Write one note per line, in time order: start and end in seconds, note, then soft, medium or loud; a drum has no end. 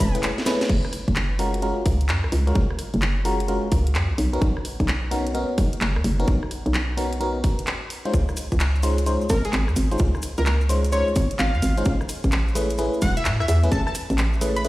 0.00 0.23 E1 loud
0.00 0.15 B5 loud
0.00 kick loud
0.00 open hi-hat loud
0.00 maracas loud
0.15 0.31 A3 medium
0.15 0.31 C#4 medium
0.15 0.31 E4 medium
0.15 0.31 G#4 medium
0.15 0.31 B4 medium
0.15 closed hi-hat medium
0.15 maracas soft
0.23 clap loud
0.23 closed hi-hat medium
0.23 maracas medium
0.38 snare medium
0.38 maracas soft
0.46 0.65 A3 medium
0.46 0.65 C#4 medium
0.46 0.65 E4 medium
0.46 0.65 G#4 medium
0.46 0.65 B4 loud
0.46 snare medium
0.46 open hi-hat loud
0.46 maracas loud
0.61 snare medium
0.61 open hi-hat medium
0.61 maracas soft
0.69 0.82 F#1 loud
0.69 kick loud
0.69 closed hi-hat medium
0.69 crash medium
0.85 cross-stick medium
0.93 cross-stick soft
0.93 open hi-hat loud
1.08 1.73 F#1 loud
1.08 kick medium
1.08 closed hi-hat soft
1.16 clap loud
1.16 closed hi-hat medium
1.39 1.53 G#3 medium
1.39 1.53 C#4 medium
1.39 1.53 F4 medium
1.39 1.53 F#4 medium
1.39 1.53 A#4 loud
1.39 open hi-hat medium
1.54 closed hi-hat medium
1.62 1.82 G#3 medium
1.62 1.82 C#4 medium
1.62 1.82 F4 medium
1.62 1.82 F#4 medium
1.62 1.82 A#4 loud
1.62 closed hi-hat medium
1.86 2.10 C#2 loud
1.86 kick loud
1.86 open hi-hat loud
2.01 closed hi-hat medium
2.09 2.26 F#2 medium
2.09 clap loud
2.09 closed hi-hat medium
2.24 2.31 A#1 medium
2.24 cross-stick medium
2.32 2.53 C#2 loud
2.32 open hi-hat medium
2.47 2.55 G#3 medium
2.47 2.55 C#4 medium
2.47 2.55 F4 medium
2.47 2.55 F#4 medium
2.47 2.55 A#4 loud
2.47 closed hi-hat soft
2.55 2.68 F#1 medium
2.55 kick loud
2.55 closed hi-hat medium
2.70 cross-stick medium
2.79 cross-stick soft
2.79 open hi-hat loud
2.94 3.59 F#1 loud
2.94 closed hi-hat soft
3.02 clap loud
3.02 closed hi-hat medium
3.25 3.39 G#3 medium
3.25 3.39 C#4 medium
3.25 3.39 F4 medium
3.25 3.39 F#4 medium
3.25 3.39 A#4 medium
3.25 open hi-hat medium
3.40 closed hi-hat medium
3.48 3.68 G#3 medium
3.48 3.68 C#4 medium
3.48 3.68 F4 medium
3.48 3.68 F#4 medium
3.48 3.68 A#4 medium
3.48 closed hi-hat medium
3.72 3.97 C#2 loud
3.72 kick loud
3.72 open hi-hat loud
3.87 closed hi-hat medium
3.95 4.12 F#2 loud
3.95 clap loud
3.95 closed hi-hat medium
4.10 4.17 A#1 medium
4.18 4.39 B1 loud
4.18 open hi-hat medium
4.33 4.41 B3 medium
4.33 4.41 C#4 medium
4.33 4.41 D#4 medium
4.33 4.41 F#4 medium
4.33 4.41 A#4 loud
4.33 closed hi-hat soft
4.42 4.54 B1 loud
4.42 kick loud
4.42 closed hi-hat medium
4.57 cross-stick medium
4.65 cross-stick soft
4.65 open hi-hat loud
4.80 5.46 B1 loud
4.80 kick medium
4.80 closed hi-hat soft
4.88 clap loud
4.88 closed hi-hat medium
5.11 5.26 B3 medium
5.11 5.26 C#4 medium
5.11 5.26 D#4 medium
5.11 5.26 F#4 medium
5.11 5.26 A#4 medium
5.11 open hi-hat medium
5.27 closed hi-hat medium
5.34 5.54 B3 medium
5.34 5.54 C#4 medium
5.34 5.54 D#4 medium
5.34 5.54 F#4 medium
5.34 5.54 A#4 medium
5.34 closed hi-hat medium
5.58 5.70 F#1 loud
5.58 kick loud
5.58 open hi-hat loud
5.73 closed hi-hat medium
5.81 5.98 F#1 medium
5.81 clap loud
5.81 closed hi-hat medium
5.96 6.03 D#2 medium
5.96 cross-stick medium
6.04 6.25 F#1 loud
6.04 open hi-hat medium
6.19 6.27 B3 medium
6.19 6.27 C#4 medium
6.19 6.27 D#4 medium
6.19 6.27 F#4 medium
6.19 6.27 A#4 loud
6.19 closed hi-hat soft
6.28 6.40 B1 loud
6.28 kick loud
6.28 closed hi-hat medium
6.43 cross-stick medium
6.51 cross-stick soft
6.51 open hi-hat medium
6.66 7.60 B1 loud
6.66 closed hi-hat soft
6.74 clap loud
6.74 closed hi-hat medium
6.97 7.12 B3 medium
6.97 7.12 C#4 medium
6.97 7.12 D#4 medium
6.97 7.12 F#4 medium
6.97 7.12 A#4 medium
6.97 open hi-hat medium
7.13 closed hi-hat medium
7.20 7.40 B3 medium
7.20 7.40 C#4 medium
7.20 7.40 D#4 medium
7.20 7.40 F#4 medium
7.20 7.40 A#4 loud
7.20 closed hi-hat medium
7.44 kick loud
7.44 open hi-hat loud
7.59 7.66 F#1 medium
7.59 closed hi-hat medium
7.67 clap loud
7.67 closed hi-hat medium
7.90 open hi-hat medium
8.05 8.13 G#3 medium
8.05 8.13 C#4 medium
8.05 8.13 D#4 medium
8.05 8.13 F4 medium
8.05 8.13 C5 loud
8.05 closed hi-hat soft
8.14 8.26 C#2 loud
8.14 kick loud
8.14 closed hi-hat medium
8.14 maracas soft
8.29 cross-stick soft
8.29 maracas soft
8.37 cross-stick soft
8.37 open hi-hat loud
8.37 maracas medium
8.52 9.18 C#2 loud
8.52 kick medium
8.52 closed hi-hat soft
8.52 maracas soft
8.60 clap loud
8.60 closed hi-hat medium
8.60 maracas medium
8.75 maracas soft
8.83 8.98 G#3 medium
8.83 8.98 C#4 medium
8.83 8.98 D#4 medium
8.83 8.98 F4 medium
8.83 8.98 C5 medium
8.83 open hi-hat medium
8.83 maracas medium
8.98 closed hi-hat medium
8.98 maracas soft
9.06 9.26 G#3 medium
9.06 9.26 C#4 medium
9.06 9.26 D#4 medium
9.06 9.26 F4 medium
9.06 9.26 C5 loud
9.06 closed hi-hat medium
9.06 maracas soft
9.21 maracas soft
9.29 9.42 G#1 loud
9.29 9.42 A#4 medium
9.29 kick loud
9.29 open hi-hat loud
9.29 maracas medium
9.45 9.54 G#4 medium
9.45 closed hi-hat medium
9.45 maracas soft
9.53 9.70 G#1 loud
9.53 clap loud
9.53 closed hi-hat medium
9.53 maracas soft
9.68 9.75 F2 medium
9.68 cross-stick medium
9.68 maracas soft
9.76 9.97 G#1 loud
9.76 open hi-hat medium
9.76 maracas medium
9.91 9.99 G#3 medium
9.91 9.99 C#4 medium
9.91 9.99 D#4 medium
9.91 9.99 F4 medium
9.91 9.99 C5 loud
9.91 closed hi-hat soft
9.91 maracas soft
9.98 10.12 C#2 loud
9.98 kick loud
9.98 closed hi-hat medium
9.98 maracas soft
10.15 cross-stick soft
10.15 maracas soft
10.22 cross-stick soft
10.22 open hi-hat loud
10.22 maracas medium
10.38 11.04 C#2 loud
10.38 10.43 A#4 medium
10.38 closed hi-hat soft
10.38 maracas soft
10.46 10.56 A#4 medium
10.46 clap loud
10.46 closed hi-hat medium
10.46 maracas soft
10.61 maracas soft
10.69 10.84 G#3 medium
10.69 10.84 C#4 medium
10.69 10.84 D#4 medium
10.69 10.84 F4 medium
10.69 10.84 C5 loud
10.69 open hi-hat medium
10.69 maracas medium
10.85 closed hi-hat medium
10.85 maracas soft
10.92 11.12 G#3 medium
10.92 11.12 C#4 medium
10.92 11.12 D#4 medium
10.92 11.12 F4 medium
10.92 11.12 C5 loud
10.92 11.08 C#5 medium
10.92 closed hi-hat medium
10.92 maracas medium
11.07 maracas soft
11.16 11.28 G#1 loud
11.16 kick loud
11.16 open hi-hat loud
11.16 maracas medium
11.31 closed hi-hat medium
11.31 maracas soft
11.39 11.56 G#1 medium
11.39 11.92 F5 medium
11.39 clap loud
11.39 closed hi-hat medium
11.39 maracas soft
11.54 11.61 F2 medium
11.54 maracas soft
11.62 11.83 G#1 loud
11.62 open hi-hat medium
11.62 maracas medium
11.77 11.85 G#3 medium
11.77 11.85 C#4 medium
11.77 11.85 D#4 medium
11.77 11.85 F4 medium
11.77 11.85 C5 loud
11.77 closed hi-hat soft
11.77 maracas soft
11.85 11.98 A1 loud
11.85 kick loud
11.85 closed hi-hat medium
11.85 maracas soft
12.01 cross-stick soft
12.01 maracas soft
12.09 cross-stick soft
12.09 open hi-hat loud
12.09 maracas medium
12.24 12.90 A1 loud
12.24 kick medium
12.24 closed hi-hat soft
12.24 maracas soft
12.32 clap loud
12.32 closed hi-hat medium
12.32 maracas soft
12.48 maracas soft
12.55 12.70 A3 medium
12.55 12.70 C#4 medium
12.55 12.70 E4 medium
12.55 12.70 G#4 medium
12.55 12.70 B4 loud
12.55 open hi-hat medium
12.55 maracas medium
12.70 closed hi-hat medium
12.70 maracas soft
12.78 12.98 A3 medium
12.78 12.98 C#4 medium
12.78 12.98 E4 medium
12.78 12.98 G#4 medium
12.78 12.98 B4 loud
12.78 closed hi-hat medium
12.78 maracas medium
12.94 maracas soft
13.02 13.27 E1 loud
13.02 13.14 F#5 medium
13.02 kick loud
13.02 open hi-hat loud
13.02 maracas medium
13.17 13.26 E5 medium
13.17 closed hi-hat medium
13.17 maracas soft
13.25 13.42 A2 loud
13.25 clap loud
13.25 closed hi-hat medium
13.25 maracas medium
13.40 13.47 C#2 medium
13.40 13.45 E5 medium
13.40 cross-stick medium
13.40 maracas soft
13.48 13.69 E2 loud
13.48 13.58 E5 medium
13.48 open hi-hat loud
13.48 maracas medium
13.63 13.71 A3 medium
13.63 13.71 C#4 medium
13.63 13.71 E4 medium
13.63 13.71 G#4 medium
13.63 13.71 B4 loud
13.63 closed hi-hat soft
13.63 maracas soft
13.71 13.84 A1 loud
13.71 13.81 A5 medium
13.71 kick loud
13.71 closed hi-hat medium
13.71 maracas soft
13.87 13.92 A5 medium
13.87 cross-stick medium
13.87 maracas soft
13.95 cross-stick soft
13.95 open hi-hat loud
13.95 maracas medium
14.10 14.68 A1 loud
14.10 closed hi-hat soft
14.10 maracas soft
14.18 clap loud
14.18 closed hi-hat medium
14.18 maracas soft
14.33 maracas soft
14.41 14.56 A3 medium
14.41 14.56 C#4 medium
14.41 14.56 E4 medium
14.41 14.56 G#4 medium
14.41 14.56 B4 loud
14.41 open hi-hat medium
14.41 maracas medium
14.56 14.68 B5 loud
14.56 closed hi-hat medium
14.56 maracas soft
14.64 14.68 A3 medium
14.64 14.68 C#4 medium
14.64 14.68 E4 medium
14.64 14.68 G#4 medium
14.64 14.68 B4 loud
14.64 closed hi-hat medium
14.64 maracas soft